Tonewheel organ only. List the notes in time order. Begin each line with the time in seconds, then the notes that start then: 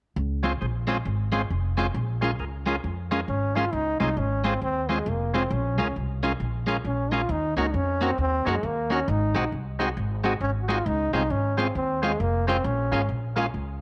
0.43 C#4 F4 G#4 C5
0.61 G#4 C5
0.88 C#4 F4 G#4 C5
1.32 C#4 F4 G#4 C5
1.77 C#4 F4 G#4 C5
2.21 C#4 F4 G#4 A#4
2.40 G#4 A#4
2.66 C#4 F4 G#4 A#4
3.11 C#4 F4 G#4 A#4
3.55 C#4 F4 G#4 A#4
4.00 C#4 F4 G#4 C5
4.44 C#4 F4 G#4 C5
4.89 C#4 F4 G#4 C5
5.34 C#4 F4 G#4 C5
5.78 C#4 F4 G#4 A#4
6.23 C#4 F4 G#4 A#4
6.67 C#4 F4 G#4 A#4
7.12 C#4 F4 G#4 A#4
7.57 C#4 D#4 F#4 A#4
8.01 C#4 D#4 F#4 A#4
8.45 C#4 D#4 F#4 A#4
8.90 C#4 D#4 F#4 A#4
9.35 C4 D#4 F#4 G#4
9.79 C4 D#4 F#4 G#4
10.24 C4 D#4 F#4 G#4
10.68 C4 D#4 F#4 G#4
11.13 C4 C#4 F4 G#4
11.57 C4 C#4 F4 G#4
12.02 C4 C#4 F4 G#4
12.47 C4 C#4 F4 G#4
12.92 A#3 C#4 F4 G#4
13.36 A#3 C#4 F4 G#4